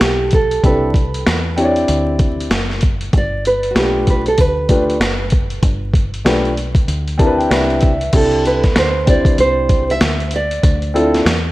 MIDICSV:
0, 0, Header, 1, 5, 480
1, 0, Start_track
1, 0, Key_signature, 0, "major"
1, 0, Tempo, 625000
1, 486, Time_signature, 4, 2, 24, 8
1, 8847, End_track
2, 0, Start_track
2, 0, Title_t, "Nylon-string guitar"
2, 0, Program_c, 0, 24
2, 0, Note_on_c, 0, 67, 90
2, 233, Note_off_c, 0, 67, 0
2, 264, Note_on_c, 0, 69, 86
2, 502, Note_off_c, 0, 69, 0
2, 505, Note_on_c, 0, 71, 83
2, 1905, Note_off_c, 0, 71, 0
2, 2438, Note_on_c, 0, 74, 102
2, 2662, Note_off_c, 0, 74, 0
2, 2665, Note_on_c, 0, 71, 81
2, 2847, Note_on_c, 0, 66, 59
2, 2859, Note_off_c, 0, 71, 0
2, 2888, Note_off_c, 0, 66, 0
2, 2911, Note_on_c, 0, 67, 90
2, 3145, Note_off_c, 0, 67, 0
2, 3150, Note_on_c, 0, 71, 88
2, 3284, Note_off_c, 0, 71, 0
2, 3287, Note_on_c, 0, 69, 75
2, 3382, Note_off_c, 0, 69, 0
2, 3382, Note_on_c, 0, 71, 87
2, 5774, Note_off_c, 0, 71, 0
2, 6263, Note_on_c, 0, 69, 89
2, 6501, Note_off_c, 0, 69, 0
2, 6504, Note_on_c, 0, 71, 82
2, 6742, Note_off_c, 0, 71, 0
2, 6747, Note_on_c, 0, 72, 89
2, 6960, Note_off_c, 0, 72, 0
2, 6985, Note_on_c, 0, 74, 97
2, 7219, Note_off_c, 0, 74, 0
2, 7222, Note_on_c, 0, 72, 96
2, 7608, Note_off_c, 0, 72, 0
2, 7611, Note_on_c, 0, 76, 100
2, 7945, Note_off_c, 0, 76, 0
2, 7953, Note_on_c, 0, 74, 102
2, 8847, Note_off_c, 0, 74, 0
2, 8847, End_track
3, 0, Start_track
3, 0, Title_t, "Grand piano"
3, 0, Program_c, 1, 0
3, 484, Note_on_c, 1, 60, 59
3, 490, Note_on_c, 1, 62, 62
3, 495, Note_on_c, 1, 64, 55
3, 498, Note_on_c, 1, 67, 60
3, 501, Note_on_c, 1, 69, 75
3, 669, Note_off_c, 1, 60, 0
3, 672, Note_off_c, 1, 62, 0
3, 675, Note_off_c, 1, 64, 0
3, 676, Note_off_c, 1, 67, 0
3, 677, Note_off_c, 1, 69, 0
3, 1201, Note_on_c, 1, 60, 75
3, 1207, Note_on_c, 1, 62, 60
3, 1210, Note_on_c, 1, 64, 64
3, 1215, Note_on_c, 1, 67, 66
3, 1220, Note_on_c, 1, 73, 62
3, 1268, Note_on_c, 1, 74, 78
3, 1274, Note_off_c, 1, 73, 0
3, 1886, Note_off_c, 1, 60, 0
3, 1889, Note_off_c, 1, 62, 0
3, 1890, Note_off_c, 1, 64, 0
3, 1893, Note_off_c, 1, 67, 0
3, 1920, Note_off_c, 1, 74, 0
3, 2879, Note_on_c, 1, 57, 70
3, 2879, Note_on_c, 1, 62, 59
3, 2886, Note_on_c, 1, 65, 64
3, 2891, Note_on_c, 1, 67, 66
3, 2895, Note_on_c, 1, 71, 80
3, 3240, Note_off_c, 1, 57, 0
3, 3240, Note_off_c, 1, 62, 0
3, 3243, Note_off_c, 1, 65, 0
3, 3245, Note_off_c, 1, 67, 0
3, 3247, Note_off_c, 1, 71, 0
3, 3600, Note_on_c, 1, 57, 68
3, 3602, Note_on_c, 1, 62, 66
3, 3609, Note_on_c, 1, 65, 64
3, 3613, Note_on_c, 1, 67, 63
3, 3618, Note_on_c, 1, 71, 72
3, 3787, Note_off_c, 1, 57, 0
3, 3788, Note_off_c, 1, 62, 0
3, 3791, Note_off_c, 1, 65, 0
3, 3793, Note_off_c, 1, 67, 0
3, 3796, Note_off_c, 1, 71, 0
3, 4797, Note_on_c, 1, 57, 78
3, 4800, Note_on_c, 1, 62, 67
3, 4807, Note_on_c, 1, 65, 69
3, 4809, Note_on_c, 1, 67, 72
3, 4814, Note_on_c, 1, 71, 80
3, 4985, Note_off_c, 1, 57, 0
3, 4987, Note_off_c, 1, 62, 0
3, 4990, Note_off_c, 1, 65, 0
3, 4991, Note_off_c, 1, 67, 0
3, 4994, Note_off_c, 1, 71, 0
3, 5511, Note_on_c, 1, 60, 83
3, 5520, Note_on_c, 1, 62, 72
3, 5521, Note_on_c, 1, 81, 65
3, 5523, Note_on_c, 1, 64, 80
3, 5527, Note_on_c, 1, 67, 71
3, 5529, Note_on_c, 1, 70, 69
3, 5580, Note_on_c, 1, 71, 91
3, 5588, Note_off_c, 1, 70, 0
3, 5660, Note_off_c, 1, 81, 0
3, 5670, Note_on_c, 1, 79, 65
3, 5746, Note_off_c, 1, 60, 0
3, 5748, Note_off_c, 1, 62, 0
3, 5753, Note_off_c, 1, 64, 0
3, 5756, Note_off_c, 1, 67, 0
3, 5757, Note_on_c, 1, 60, 77
3, 5758, Note_off_c, 1, 79, 0
3, 5759, Note_off_c, 1, 71, 0
3, 5760, Note_on_c, 1, 62, 64
3, 5763, Note_on_c, 1, 76, 72
3, 5764, Note_on_c, 1, 64, 68
3, 5768, Note_on_c, 1, 67, 65
3, 5771, Note_on_c, 1, 71, 83
3, 5988, Note_off_c, 1, 76, 0
3, 6000, Note_on_c, 1, 76, 72
3, 6060, Note_off_c, 1, 60, 0
3, 6062, Note_off_c, 1, 62, 0
3, 6064, Note_off_c, 1, 64, 0
3, 6065, Note_off_c, 1, 67, 0
3, 6067, Note_off_c, 1, 71, 0
3, 6226, Note_off_c, 1, 76, 0
3, 6240, Note_on_c, 1, 60, 58
3, 6245, Note_on_c, 1, 62, 54
3, 6250, Note_on_c, 1, 64, 55
3, 6251, Note_on_c, 1, 67, 54
3, 6257, Note_on_c, 1, 69, 67
3, 6600, Note_off_c, 1, 60, 0
3, 6602, Note_off_c, 1, 62, 0
3, 6605, Note_off_c, 1, 64, 0
3, 6606, Note_off_c, 1, 67, 0
3, 6609, Note_off_c, 1, 69, 0
3, 6959, Note_on_c, 1, 60, 60
3, 6963, Note_on_c, 1, 62, 55
3, 6968, Note_on_c, 1, 64, 54
3, 6973, Note_on_c, 1, 67, 56
3, 6977, Note_on_c, 1, 72, 64
3, 7645, Note_off_c, 1, 60, 0
3, 7647, Note_off_c, 1, 62, 0
3, 7650, Note_off_c, 1, 64, 0
3, 7652, Note_off_c, 1, 67, 0
3, 7654, Note_off_c, 1, 72, 0
3, 8401, Note_on_c, 1, 60, 73
3, 8403, Note_on_c, 1, 62, 65
3, 8408, Note_on_c, 1, 64, 73
3, 8413, Note_on_c, 1, 65, 68
3, 8413, Note_on_c, 1, 69, 83
3, 8587, Note_off_c, 1, 60, 0
3, 8588, Note_off_c, 1, 62, 0
3, 8591, Note_off_c, 1, 64, 0
3, 8593, Note_off_c, 1, 65, 0
3, 8593, Note_off_c, 1, 69, 0
3, 8847, End_track
4, 0, Start_track
4, 0, Title_t, "Fingered electric bass"
4, 0, Program_c, 2, 33
4, 7, Note_on_c, 2, 35, 92
4, 462, Note_off_c, 2, 35, 0
4, 487, Note_on_c, 2, 36, 90
4, 942, Note_off_c, 2, 36, 0
4, 973, Note_on_c, 2, 40, 90
4, 1426, Note_off_c, 2, 40, 0
4, 1449, Note_on_c, 2, 38, 87
4, 1903, Note_off_c, 2, 38, 0
4, 1923, Note_on_c, 2, 30, 93
4, 2380, Note_off_c, 2, 30, 0
4, 2406, Note_on_c, 2, 31, 100
4, 2862, Note_off_c, 2, 31, 0
4, 2883, Note_on_c, 2, 35, 83
4, 3340, Note_off_c, 2, 35, 0
4, 3366, Note_on_c, 2, 38, 81
4, 3822, Note_off_c, 2, 38, 0
4, 3839, Note_on_c, 2, 30, 87
4, 4298, Note_off_c, 2, 30, 0
4, 4320, Note_on_c, 2, 31, 103
4, 4779, Note_off_c, 2, 31, 0
4, 4800, Note_on_c, 2, 35, 88
4, 5259, Note_off_c, 2, 35, 0
4, 5282, Note_on_c, 2, 38, 82
4, 5740, Note_off_c, 2, 38, 0
4, 5764, Note_on_c, 2, 36, 96
4, 6221, Note_off_c, 2, 36, 0
4, 6243, Note_on_c, 2, 36, 102
4, 6700, Note_off_c, 2, 36, 0
4, 6728, Note_on_c, 2, 38, 80
4, 7183, Note_off_c, 2, 38, 0
4, 7206, Note_on_c, 2, 36, 84
4, 7662, Note_off_c, 2, 36, 0
4, 7686, Note_on_c, 2, 38, 79
4, 8142, Note_off_c, 2, 38, 0
4, 8167, Note_on_c, 2, 38, 92
4, 8622, Note_off_c, 2, 38, 0
4, 8644, Note_on_c, 2, 40, 83
4, 8847, Note_off_c, 2, 40, 0
4, 8847, End_track
5, 0, Start_track
5, 0, Title_t, "Drums"
5, 6, Note_on_c, 9, 42, 95
5, 7, Note_on_c, 9, 38, 106
5, 83, Note_off_c, 9, 42, 0
5, 84, Note_off_c, 9, 38, 0
5, 236, Note_on_c, 9, 42, 77
5, 253, Note_on_c, 9, 36, 87
5, 312, Note_off_c, 9, 42, 0
5, 330, Note_off_c, 9, 36, 0
5, 394, Note_on_c, 9, 42, 51
5, 470, Note_off_c, 9, 42, 0
5, 488, Note_on_c, 9, 36, 109
5, 489, Note_on_c, 9, 42, 86
5, 565, Note_off_c, 9, 36, 0
5, 566, Note_off_c, 9, 42, 0
5, 722, Note_on_c, 9, 36, 88
5, 734, Note_on_c, 9, 42, 61
5, 799, Note_off_c, 9, 36, 0
5, 810, Note_off_c, 9, 42, 0
5, 877, Note_on_c, 9, 42, 53
5, 954, Note_off_c, 9, 42, 0
5, 971, Note_on_c, 9, 38, 96
5, 973, Note_on_c, 9, 42, 83
5, 1048, Note_off_c, 9, 38, 0
5, 1050, Note_off_c, 9, 42, 0
5, 1211, Note_on_c, 9, 42, 77
5, 1288, Note_off_c, 9, 42, 0
5, 1352, Note_on_c, 9, 42, 52
5, 1429, Note_off_c, 9, 42, 0
5, 1446, Note_on_c, 9, 42, 93
5, 1523, Note_off_c, 9, 42, 0
5, 1683, Note_on_c, 9, 42, 73
5, 1685, Note_on_c, 9, 36, 92
5, 1759, Note_off_c, 9, 42, 0
5, 1762, Note_off_c, 9, 36, 0
5, 1847, Note_on_c, 9, 42, 52
5, 1923, Note_off_c, 9, 42, 0
5, 1926, Note_on_c, 9, 42, 92
5, 1927, Note_on_c, 9, 38, 108
5, 2002, Note_off_c, 9, 42, 0
5, 2004, Note_off_c, 9, 38, 0
5, 2074, Note_on_c, 9, 38, 32
5, 2151, Note_off_c, 9, 38, 0
5, 2156, Note_on_c, 9, 42, 82
5, 2172, Note_on_c, 9, 36, 88
5, 2233, Note_off_c, 9, 42, 0
5, 2248, Note_off_c, 9, 36, 0
5, 2310, Note_on_c, 9, 42, 51
5, 2387, Note_off_c, 9, 42, 0
5, 2405, Note_on_c, 9, 36, 113
5, 2405, Note_on_c, 9, 42, 83
5, 2481, Note_off_c, 9, 42, 0
5, 2482, Note_off_c, 9, 36, 0
5, 2651, Note_on_c, 9, 42, 67
5, 2728, Note_off_c, 9, 42, 0
5, 2790, Note_on_c, 9, 42, 53
5, 2867, Note_off_c, 9, 42, 0
5, 2887, Note_on_c, 9, 38, 101
5, 2889, Note_on_c, 9, 42, 85
5, 2963, Note_off_c, 9, 38, 0
5, 2966, Note_off_c, 9, 42, 0
5, 3126, Note_on_c, 9, 42, 79
5, 3129, Note_on_c, 9, 36, 80
5, 3203, Note_off_c, 9, 42, 0
5, 3206, Note_off_c, 9, 36, 0
5, 3271, Note_on_c, 9, 42, 48
5, 3347, Note_off_c, 9, 42, 0
5, 3361, Note_on_c, 9, 42, 97
5, 3366, Note_on_c, 9, 36, 89
5, 3438, Note_off_c, 9, 42, 0
5, 3443, Note_off_c, 9, 36, 0
5, 3601, Note_on_c, 9, 42, 81
5, 3603, Note_on_c, 9, 36, 89
5, 3678, Note_off_c, 9, 42, 0
5, 3680, Note_off_c, 9, 36, 0
5, 3761, Note_on_c, 9, 42, 53
5, 3838, Note_off_c, 9, 42, 0
5, 3846, Note_on_c, 9, 42, 93
5, 3848, Note_on_c, 9, 38, 115
5, 3923, Note_off_c, 9, 42, 0
5, 3924, Note_off_c, 9, 38, 0
5, 4072, Note_on_c, 9, 42, 73
5, 4089, Note_on_c, 9, 36, 88
5, 4149, Note_off_c, 9, 42, 0
5, 4166, Note_off_c, 9, 36, 0
5, 4227, Note_on_c, 9, 42, 50
5, 4304, Note_off_c, 9, 42, 0
5, 4322, Note_on_c, 9, 36, 109
5, 4322, Note_on_c, 9, 42, 96
5, 4399, Note_off_c, 9, 36, 0
5, 4399, Note_off_c, 9, 42, 0
5, 4558, Note_on_c, 9, 36, 94
5, 4571, Note_on_c, 9, 42, 64
5, 4635, Note_off_c, 9, 36, 0
5, 4647, Note_off_c, 9, 42, 0
5, 4713, Note_on_c, 9, 42, 54
5, 4790, Note_off_c, 9, 42, 0
5, 4807, Note_on_c, 9, 38, 100
5, 4809, Note_on_c, 9, 42, 86
5, 4883, Note_off_c, 9, 38, 0
5, 4886, Note_off_c, 9, 42, 0
5, 4955, Note_on_c, 9, 42, 32
5, 5032, Note_off_c, 9, 42, 0
5, 5048, Note_on_c, 9, 42, 74
5, 5125, Note_off_c, 9, 42, 0
5, 5182, Note_on_c, 9, 36, 94
5, 5190, Note_on_c, 9, 42, 49
5, 5259, Note_off_c, 9, 36, 0
5, 5266, Note_off_c, 9, 42, 0
5, 5286, Note_on_c, 9, 42, 85
5, 5363, Note_off_c, 9, 42, 0
5, 5434, Note_on_c, 9, 42, 38
5, 5511, Note_off_c, 9, 42, 0
5, 5524, Note_on_c, 9, 36, 89
5, 5525, Note_on_c, 9, 42, 76
5, 5601, Note_off_c, 9, 36, 0
5, 5602, Note_off_c, 9, 42, 0
5, 5688, Note_on_c, 9, 42, 44
5, 5765, Note_off_c, 9, 42, 0
5, 5770, Note_on_c, 9, 42, 100
5, 5771, Note_on_c, 9, 38, 113
5, 5847, Note_off_c, 9, 42, 0
5, 5848, Note_off_c, 9, 38, 0
5, 5915, Note_on_c, 9, 42, 33
5, 5992, Note_off_c, 9, 42, 0
5, 5995, Note_on_c, 9, 42, 71
5, 6011, Note_on_c, 9, 36, 96
5, 6072, Note_off_c, 9, 42, 0
5, 6088, Note_off_c, 9, 36, 0
5, 6152, Note_on_c, 9, 42, 49
5, 6229, Note_off_c, 9, 42, 0
5, 6241, Note_on_c, 9, 49, 95
5, 6242, Note_on_c, 9, 42, 96
5, 6244, Note_on_c, 9, 36, 118
5, 6318, Note_off_c, 9, 49, 0
5, 6319, Note_off_c, 9, 42, 0
5, 6321, Note_off_c, 9, 36, 0
5, 6386, Note_on_c, 9, 42, 37
5, 6463, Note_off_c, 9, 42, 0
5, 6493, Note_on_c, 9, 42, 68
5, 6570, Note_off_c, 9, 42, 0
5, 6632, Note_on_c, 9, 42, 52
5, 6634, Note_on_c, 9, 38, 37
5, 6635, Note_on_c, 9, 36, 82
5, 6709, Note_off_c, 9, 42, 0
5, 6710, Note_off_c, 9, 38, 0
5, 6712, Note_off_c, 9, 36, 0
5, 6726, Note_on_c, 9, 38, 100
5, 6728, Note_on_c, 9, 42, 80
5, 6803, Note_off_c, 9, 38, 0
5, 6805, Note_off_c, 9, 42, 0
5, 6968, Note_on_c, 9, 42, 86
5, 6970, Note_on_c, 9, 36, 91
5, 7045, Note_off_c, 9, 42, 0
5, 7047, Note_off_c, 9, 36, 0
5, 7104, Note_on_c, 9, 36, 95
5, 7112, Note_on_c, 9, 42, 53
5, 7180, Note_off_c, 9, 36, 0
5, 7188, Note_off_c, 9, 42, 0
5, 7205, Note_on_c, 9, 42, 91
5, 7282, Note_off_c, 9, 42, 0
5, 7444, Note_on_c, 9, 42, 75
5, 7445, Note_on_c, 9, 36, 83
5, 7520, Note_off_c, 9, 42, 0
5, 7522, Note_off_c, 9, 36, 0
5, 7604, Note_on_c, 9, 42, 47
5, 7680, Note_off_c, 9, 42, 0
5, 7685, Note_on_c, 9, 42, 98
5, 7686, Note_on_c, 9, 38, 103
5, 7762, Note_off_c, 9, 42, 0
5, 7763, Note_off_c, 9, 38, 0
5, 7836, Note_on_c, 9, 42, 35
5, 7912, Note_off_c, 9, 42, 0
5, 7916, Note_on_c, 9, 42, 78
5, 7993, Note_off_c, 9, 42, 0
5, 8073, Note_on_c, 9, 42, 56
5, 8150, Note_off_c, 9, 42, 0
5, 8167, Note_on_c, 9, 36, 111
5, 8168, Note_on_c, 9, 42, 101
5, 8244, Note_off_c, 9, 36, 0
5, 8245, Note_off_c, 9, 42, 0
5, 8311, Note_on_c, 9, 42, 34
5, 8387, Note_off_c, 9, 42, 0
5, 8417, Note_on_c, 9, 42, 65
5, 8494, Note_off_c, 9, 42, 0
5, 8559, Note_on_c, 9, 42, 51
5, 8560, Note_on_c, 9, 38, 35
5, 8635, Note_off_c, 9, 42, 0
5, 8637, Note_off_c, 9, 38, 0
5, 8651, Note_on_c, 9, 38, 101
5, 8653, Note_on_c, 9, 42, 88
5, 8727, Note_off_c, 9, 38, 0
5, 8730, Note_off_c, 9, 42, 0
5, 8847, End_track
0, 0, End_of_file